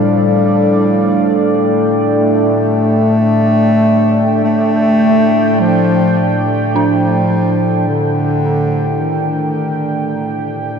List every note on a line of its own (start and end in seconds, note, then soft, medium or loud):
0.00 10.79 A2 medium
0.00 1.91 G3 medium
0.00 10.79 D4 medium
0.00 10.79 A4 medium
0.00 10.79 D5 medium
0.00 1.46 F5 medium
1.43 10.79 G5 medium
2.18 4.44 A3 loud
4.44 5.62 A3 loud
5.60 6.48 F3 loud
6.74 7.84 F3 medium
6.74 10.79 D4 medium
7.88 9.01 D3 loud
9.00 10.71 D#3 medium